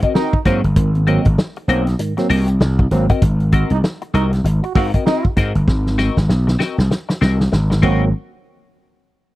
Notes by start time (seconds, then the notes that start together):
0.02 C4 F#4 A#4 D#5, kick, closed hi-hat
0.14 C4 D#4 F#4 A#4 D#5, snare
0.33 muted clean electric guitar stroke, kick
0.45 G#2 F#3 A#3 C4 F#4 A#4 D#5, kick, snare, closed hi-hat
0.64 G1, muted clean electric guitar stroke, closed hi-hat
0.76 G#1 G#2 D#3, kick, closed hi-hat
0.95 A#3 C4, closed hi-hat
1.07 F#3 A#3 C4 F#4 A#4 D#5, closed hi-hat
1.25 G#1, kick, closed hi-hat
1.38 muted clean electric guitar stroke, snare
1.56 muted clean electric guitar stroke, closed hi-hat
1.68 B1 F#3 A#3 C4 F#4 A#4 D#5, closed hi-hat
1.87 muted clean electric guitar stroke, snare, closed hi-hat
1.99 G#2 D#3, muted clean electric guitar stroke, closed hi-hat
2.17 F#3 A#3 C4, muted clean electric guitar stroke, snare, closed hi-hat
2.30 C2 A#3 C4 F#4 A#4 D#5, open hi-hat
2.48 muted clean electric guitar stroke, closed hi-hat
2.60 C2, muted clean electric guitar stroke, snare
2.79 muted clean electric guitar stroke, kick
2.91 G#1 F#3 A#3 C4, snare, closed hi-hat
3.09 C4 F#4 A#4 D#5, kick, closed hi-hat
3.22 G#1, kick, closed hi-hat
3.40 closed hi-hat
3.52 C4 F#4 A#4 D#5, kick, closed hi-hat
3.70 C2 D#4, closed hi-hat
3.84 muted clean electric guitar stroke, snare
4.02 muted clean electric guitar stroke, closed hi-hat
4.14 C2 C4 D#4 F#4 A#4 D#5, closed hi-hat
4.32 muted clean electric guitar stroke, snare, closed hi-hat
4.44 G#1, muted clean electric guitar stroke, closed hi-hat
4.63 F#4, muted clean electric guitar stroke, closed hi-hat
4.75 G#2 C4 F#4 A#4 F5, kick, open hi-hat
4.94 C4 F#4 A#4 D#5, kick, closed hi-hat
5.05 C4 D#4 F#4 A#4 D#5, snare
5.25 muted clean electric guitar stroke, kick
5.37 G#2 C4 F#4 A#4 D#5, kick, snare, closed hi-hat
5.55 G1, muted clean electric guitar stroke, closed hi-hat
5.67 G#1, kick, snare
5.87 snare
5.98 C4 F#4 A#4 D#5, snare
6.17 G#1, snare
6.29 B1, muted clean electric guitar stroke, snare
6.47 muted clean electric guitar stroke, snare
6.59 C4 F#4 A#4 D#5, snare
6.78 C2, muted clean electric guitar stroke, snare
6.91 muted clean electric guitar stroke, snare
7.09 muted clean electric guitar stroke, snare
7.21 C2 C4 F#4 A#4 D#5, snare
7.40 muted clean electric guitar stroke, snare
7.52 G#1, muted clean electric guitar stroke, snare
7.70 muted clean electric guitar stroke, snare
7.82 G#1 F#3 A#3 C4 F#4 A#4 D#5, kick, crash